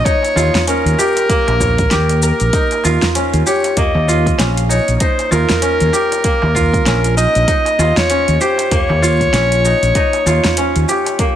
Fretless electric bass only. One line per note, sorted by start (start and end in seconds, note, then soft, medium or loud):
0.36 0.48 D#2 loud
0.85 0.94 D#2 medium
1.48 1.85 A#1 medium
1.92 2.31 D#2 medium
2.41 2.49 A#1 medium
2.85 2.96 D#2 medium
3.33 3.42 D#2 medium
3.95 4.32 D#2 loud
4.39 4.78 A#1 loud
4.88 4.96 A#1 medium
5.32 5.44 D#2 loud
5.81 5.89 D#2 medium
6.43 6.79 D#2 loud
6.86 7.25 A#1 loud
7.36 7.44 A#1 medium
7.79 7.91 D#2 loud
8.28 8.36 D#2 medium
8.90 9.27 D#2 loud
9.33 9.73 A#1 loud
9.82 9.91 A#1 medium
10.26 10.38 D#2 loud
10.76 10.84 D#2 medium